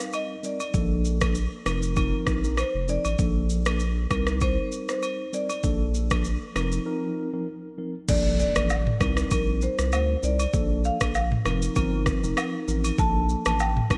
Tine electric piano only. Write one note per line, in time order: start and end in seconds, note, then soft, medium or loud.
0.00 0.34 G3 medium
0.00 0.34 C4 medium
0.00 0.35 D#4 medium
0.00 0.35 A#4 loud
0.43 0.59 G3 medium
0.43 0.59 C4 medium
0.43 0.59 D#4 medium
0.43 0.59 A#4 medium
0.74 1.17 F3 medium
0.74 1.17 A#3 medium
0.74 1.18 D4 medium
0.74 1.18 A4 medium
1.21 1.34 F3 medium
1.21 1.34 A#3 medium
1.21 1.34 D4 medium
1.21 1.34 A4 medium
1.65 1.94 F3 medium
1.65 1.94 C4 medium
1.65 1.94 D#4 medium
1.65 1.94 A#4 medium
1.96 2.40 F3 medium
1.96 2.40 C4 medium
1.96 2.40 D#4 medium
1.96 2.40 A#4 loud
2.44 2.57 F3 medium
2.44 2.57 C4 medium
2.44 2.57 D#4 medium
2.44 2.57 A#4 medium
2.88 3.04 F3 medium
2.88 3.04 C4 medium
2.88 3.04 D#4 medium
2.88 3.04 A#4 medium
3.19 3.62 F3 medium
3.19 3.62 A#3 medium
3.19 3.62 D4 medium
3.19 3.62 A4 medium
3.66 3.79 F3 medium
3.66 3.79 A#3 medium
3.66 3.79 D4 medium
3.66 3.79 A4 medium
4.11 5.24 G3 medium
4.11 5.24 C4 medium
4.11 5.25 D#4 medium
4.11 5.25 A#4 loud
5.33 5.49 G3 medium
5.33 5.49 C4 medium
5.33 5.49 D#4 medium
5.33 5.49 A#4 medium
5.64 6.07 F3 medium
5.64 6.07 A#3 medium
5.64 6.07 D4 medium
5.64 6.07 A4 medium
6.11 6.24 F3 medium
6.11 6.24 A#3 medium
6.11 6.24 D4 medium
6.11 6.24 A4 medium
6.55 6.84 F3 medium
6.55 6.84 C4 medium
6.55 6.84 D#4 medium
6.55 6.84 A#4 loud
6.86 7.29 F3 medium
6.86 7.29 C4 medium
6.86 7.30 D#4 medium
6.86 7.30 A#4 loud
7.33 7.46 F3 medium
7.33 7.46 C4 medium
7.33 7.47 D#4 medium
7.33 7.47 A#4 medium
7.78 7.94 F3 medium
7.78 7.94 C4 medium
7.78 7.94 D#4 medium
7.78 7.94 A#4 medium
8.08 8.52 F3 medium
8.08 8.52 A#3 medium
8.08 8.52 D4 medium
8.08 8.52 A4 medium
8.56 8.69 F3 medium
8.56 8.69 A#3 medium
8.56 8.69 D4 medium
8.56 8.69 A4 medium
9.00 10.14 G3 medium
9.00 10.14 C4 medium
9.00 10.14 D#4 medium
9.00 10.14 A#4 loud
10.23 10.39 G3 medium
10.23 10.39 C4 medium
10.23 10.39 D#4 medium
10.23 10.39 A#4 medium
10.53 10.97 F3 medium
10.53 10.97 A#3 medium
10.53 10.97 D4 medium
10.53 10.97 A4 loud
11.00 11.14 F3 medium
11.00 11.14 A#3 medium
11.00 11.14 D4 medium
11.00 11.14 A4 medium
11.45 11.74 F3 medium
11.45 11.74 C4 medium
11.45 11.74 D#4 medium
11.45 11.74 A#4 loud
11.76 12.19 F3 medium
11.76 12.19 C4 medium
11.76 12.19 D#4 medium
11.76 12.20 A#4 loud
12.23 12.64 F3 medium
12.23 12.64 C4 medium
12.23 12.65 D#4 medium
12.23 12.65 A#4 medium
12.68 12.96 F3 medium
12.68 12.96 C4 medium
12.68 12.96 D#4 medium
12.68 12.96 A#4 medium
12.98 13.42 F3 medium
12.98 13.42 A#3 medium
12.98 13.42 D4 medium
12.98 13.42 A4 medium
13.45 13.59 F3 medium
13.45 13.59 A#3 medium
13.45 13.59 D4 medium
13.45 13.59 A4 medium
13.90 13.98 G3 medium
13.90 13.98 C4 medium
13.90 13.98 D#4 medium
13.90 13.98 A#4 loud